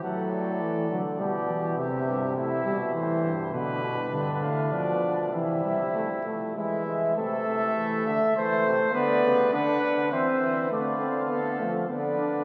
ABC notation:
X:1
M:3/4
L:1/8
Q:1/4=102
K:Am
V:1 name="Cornet"
^f d3 d2 | e2 e2 c2 | B3 f d2 | e3 z e2 |
e4 c2 | d2 ^f2 e2 | f4 d2 |]
V:2 name="Flugelhorn"
A4 G2 | G2 E3 z | D6 | E4 E2 |
A3 e c2 | B2 B2 c2 | d2 A2 B2 |]
V:3 name="Trombone" clef=bass
^F,2 E, F, G, E, | C,3 G, E, z | B,,2 D,2 F,2 | E, G, A, A, ^G, G, |
A,4 A,2 | B,2 D2 C2 | A, C B, A, B, D |]
V:4 name="Euphonium" clef=bass
A,,3 D, B,,2 | E,, G,, A,, B,, A,, G,, | D, B,, G,, A,, B,, B,, | C,3 z E,2 |
C, C, E, D, E, C, | D, ^C, D, D, E, E, | D,3 F, D,2 |]